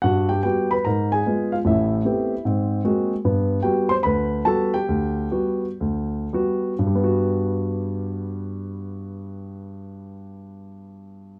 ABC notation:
X:1
M:4/4
L:1/8
Q:"Swing" 1/4=138
K:G
V:1 name="Grand piano"
[Ff] [Gg] [Gg] [Bb] [_B_b] [_A_a]2 [=F=f] | [Ee]4 z4 | z2 [Gg] [cc'] [Bb]2 [Aa] [Gg]- | [Gg]3 z4 z |
[G,,G,B,F]8- | [G,,G,B,F]8 |]
V:2 name="Grand piano"
G,,2 [G,B,F] z _A,,2 [_A,_C=F] z | [A,,,A,,]2 [A,B,CG] z [_A,,C]2 [_A,_B,C_G] z | [G,,B,]2 [G,B,F] z D,,2 [G,B,F] z | D,,2 [G,B,F] z D,,2 [G,B,F] z |
z8 | z8 |]